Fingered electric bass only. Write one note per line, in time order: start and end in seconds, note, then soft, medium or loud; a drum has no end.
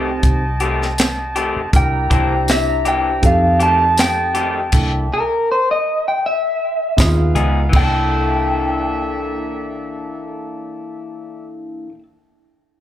0.00 0.19 C2 medium
0.23 1.52 C2 loud
1.56 muted fingered electric bass stroke soft
1.73 2.09 C2 loud
2.11 3.19 C2 medium
3.23 4.69 F2 medium
4.72 5.08 C2 loud
6.98 7.32 D#2 medium
7.35 7.69 C#2 medium
7.73 11.89 C2 medium